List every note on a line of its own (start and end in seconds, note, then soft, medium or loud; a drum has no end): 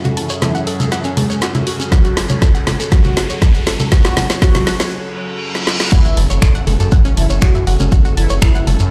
0.00 4.92 F#2 medium
0.00 4.92 C#3 medium
0.00 5.88 F#3 medium
0.00 5.88 C#4 medium
0.00 5.88 G#4 medium
0.00 5.88 A4 medium
0.00 riser medium
0.00 shekere soft
0.05 0.10 F#4 medium
0.05 closed hi-hat soft
0.05 low conga medium
0.17 0.32 E3 medium
0.17 0.32 E4 medium
0.17 0.20 A5 medium
0.17 open hi-hat loud
0.29 0.35 C#5 medium
0.29 closed hi-hat soft
0.29 shekere medium
0.42 0.64 E3 medium
0.42 0.64 E4 loud
0.42 0.50 A4 medium
0.42 snare medium
0.42 closed hi-hat medium
0.42 low conga medium
0.42 shekere medium
0.55 0.60 F#5 loud
0.55 closed hi-hat soft
0.55 shekere soft
0.67 0.73 A4 medium
0.67 open hi-hat medium
0.80 0.88 A4 medium
0.80 closed hi-hat soft
0.80 low conga medium
0.80 shekere medium
0.92 0.95 F#5 medium
0.92 snare medium
0.92 closed hi-hat medium
0.92 shekere medium
1.04 1.10 C#4 loud
1.04 closed hi-hat soft
1.04 shekere soft
1.17 1.39 G#3 medium
1.17 1.39 G#4 medium
1.17 1.20 A5 medium
1.17 open hi-hat loud
1.17 low conga medium
1.30 1.35 C#5 medium
1.30 closed hi-hat soft
1.30 shekere medium
1.41 1.48 F#4 medium
1.41 snare medium
1.41 closed hi-hat medium
1.41 shekere medium
1.54 1.58 E4 medium
1.54 closed hi-hat soft
1.54 low conga medium
1.54 shekere soft
1.67 1.70 F#4 medium
1.67 open hi-hat medium
1.80 1.83 C#4 medium
1.80 closed hi-hat soft
1.80 shekere medium
1.92 2.21 F#3 medium
1.92 2.21 F#4 medium
1.92 2.00 F#4 medium
1.92 kick loud
1.92 snare medium
1.92 closed hi-hat medium
1.92 low conga medium
1.92 shekere medium
2.05 2.10 F#4 medium
2.05 closed hi-hat soft
2.05 shekere soft
2.17 2.20 A5 medium
2.17 snare medium
2.17 open hi-hat loud
2.29 2.35 C#5 medium
2.29 closed hi-hat soft
2.29 low conga medium
2.29 shekere medium
2.42 2.50 A4 medium
2.42 kick loud
2.42 snare medium
2.42 closed hi-hat medium
2.42 shekere medium
2.55 2.60 F#5 loud
2.55 closed hi-hat soft
2.55 shekere soft
2.67 2.73 A4 medium
2.67 snare medium
2.67 open hi-hat medium
2.67 low conga medium
2.80 2.88 A4 medium
2.80 closed hi-hat soft
2.80 shekere medium
2.92 3.21 F#3 medium
2.92 3.21 F#4 loud
2.92 3.00 F#4 medium
2.92 kick loud
2.92 snare medium
2.92 closed hi-hat medium
2.92 shekere medium
3.04 3.10 F#4 medium
3.04 closed hi-hat soft
3.04 low conga medium
3.04 shekere soft
3.17 3.20 A5 medium
3.17 snare medium
3.17 open hi-hat loud
3.30 3.35 C#5 medium
3.30 closed hi-hat soft
3.30 shekere medium
3.42 3.51 A4 medium
3.42 kick loud
3.42 snare medium
3.42 closed hi-hat medium
3.42 low conga medium
3.42 shekere medium
3.55 3.60 F#5 medium
3.55 closed hi-hat soft
3.55 shekere soft
3.67 3.73 A4 loud
3.67 snare medium
3.67 open hi-hat loud
3.79 3.88 A4 medium
3.79 closed hi-hat soft
3.79 low conga medium
3.79 shekere medium
3.92 4.21 F#3 medium
3.92 4.21 F#4 loud
3.92 4.00 F#4 medium
3.92 kick loud
3.92 snare medium
3.92 closed hi-hat medium
3.92 shekere medium
4.05 4.10 F#4 medium
4.05 snare medium
4.05 closed hi-hat soft
4.05 shekere soft
4.17 4.20 A5 medium
4.17 snare loud
4.17 open hi-hat loud
4.17 low conga medium
4.30 4.35 C#5 medium
4.30 snare medium
4.30 closed hi-hat soft
4.30 shekere medium
4.42 4.71 F#3 medium
4.42 4.50 F#4 medium
4.42 4.71 F#4 loud
4.42 kick loud
4.42 snare loud
4.42 closed hi-hat medium
4.42 shekere medium
4.55 4.60 F#4 medium
4.55 snare medium
4.55 closed hi-hat soft
4.55 low conga medium
4.55 shekere soft
4.67 4.70 A5 medium
4.67 snare medium
4.67 open hi-hat medium
4.80 4.85 C#5 medium
4.80 snare medium
4.80 closed hi-hat soft
4.80 shekere medium
4.92 reverse cymbal medium
5.55 snare medium
5.67 snare medium
5.80 snare medium
5.92 6.02 F#1 loud
5.92 8.91 F#2 medium
5.92 8.91 C#3 medium
5.92 6.21 E3 medium
5.92 8.91 F#3 medium
5.92 8.91 C#4 medium
5.92 6.21 E4 loud
5.92 6.01 F#4 medium
5.92 8.91 G#4 medium
5.92 8.91 A4 medium
5.92 6.01 F#5 medium
5.92 kick loud
5.92 closed hi-hat medium
5.92 crash loud
5.92 impact medium
5.92 shekere medium
6.05 6.14 F#1 medium
6.05 6.10 F#4 medium
6.05 6.10 F#5 medium
6.05 closed hi-hat soft
6.05 shekere soft
6.17 6.27 F#1 medium
6.17 6.20 A5 medium
6.17 6.20 A6 medium
6.17 open hi-hat loud
6.30 6.39 F#1 medium
6.30 6.35 C#5 medium
6.30 6.35 C#6 medium
6.30 closed hi-hat soft
6.30 shekere medium
6.42 6.52 F#1 loud
6.42 6.51 A4 medium
6.42 6.51 A5 medium
6.42 finger snap loud
6.42 kick loud
6.42 closed hi-hat medium
6.42 shekere medium
6.55 6.64 F#1 medium
6.55 6.60 F#5 loud
6.55 6.60 F#6 medium
6.55 closed hi-hat soft
6.55 shekere soft
6.67 6.77 F#1 medium
6.67 6.73 A4 medium
6.67 6.73 A5 medium
6.67 open hi-hat medium
6.67 low conga medium
6.80 6.89 F#2 medium
6.80 6.88 A4 medium
6.80 6.88 A5 medium
6.80 closed hi-hat soft
6.80 shekere medium
6.91 7.02 F#2 loud
6.91 6.95 F#5 loud
6.91 6.95 F#6 medium
6.91 kick loud
6.91 closed hi-hat medium
6.91 shekere medium
7.05 7.14 F#1 medium
7.05 7.10 C#4 loud
7.05 7.10 C#5 medium
7.05 closed hi-hat soft
7.05 shekere soft
7.17 7.27 F#1 loud
7.17 7.32 E3 medium
7.17 7.32 E4 medium
7.17 7.20 A5 medium
7.17 7.20 A6 medium
7.17 open hi-hat loud
7.30 7.39 F#1 medium
7.30 7.35 C#5 medium
7.30 7.35 C#6 medium
7.30 closed hi-hat soft
7.30 shekere medium
7.41 7.52 F#1 loud
7.41 7.64 F#3 medium
7.41 7.64 F#4 medium
7.41 7.48 F#4 medium
7.41 7.48 F#5 medium
7.41 finger snap loud
7.41 kick loud
7.41 closed hi-hat medium
7.41 shekere medium
7.55 7.64 F#2 medium
7.55 7.58 E4 medium
7.55 7.58 E5 medium
7.55 closed hi-hat soft
7.55 shekere soft
7.67 7.77 F#1 loud
7.67 7.71 F#4 medium
7.67 7.70 F#5 medium
7.67 open hi-hat medium
7.80 7.89 F#1 medium
7.80 7.83 C#4 medium
7.80 7.83 C#5 medium
7.80 closed hi-hat soft
7.80 low conga medium
7.80 shekere medium
7.92 8.02 F#1 loud
7.92 8.01 F#4 medium
7.92 8.01 F#5 medium
7.92 kick loud
7.92 closed hi-hat medium
7.92 shekere medium
8.05 8.14 F#1 medium
8.05 8.10 F#4 medium
8.05 8.10 F#5 medium
8.05 closed hi-hat soft
8.05 shekere soft
8.17 8.27 F#1 medium
8.17 8.32 E3 medium
8.17 8.32 E4 medium
8.17 8.21 A5 medium
8.17 8.21 A6 medium
8.17 open hi-hat loud
8.30 8.39 F#1 medium
8.30 8.35 C#5 medium
8.30 8.35 C#6 medium
8.30 closed hi-hat soft
8.30 shekere medium
8.42 8.52 F#1 loud
8.42 8.64 E3 medium
8.42 8.64 E4 loud
8.42 8.51 A4 medium
8.42 8.51 A5 medium
8.42 finger snap loud
8.42 kick loud
8.42 closed hi-hat medium
8.42 shekere medium
8.55 8.64 F#1 medium
8.55 8.60 F#5 loud
8.55 8.60 F#6 medium
8.55 closed hi-hat soft
8.55 shekere soft
8.67 8.77 F#1 loud
8.67 8.73 A4 loud
8.67 8.73 A5 medium
8.67 open hi-hat medium
8.67 low conga medium
8.79 8.89 F#2 medium
8.79 8.88 A4 medium
8.79 8.88 A5 medium
8.79 closed hi-hat soft
8.79 shekere medium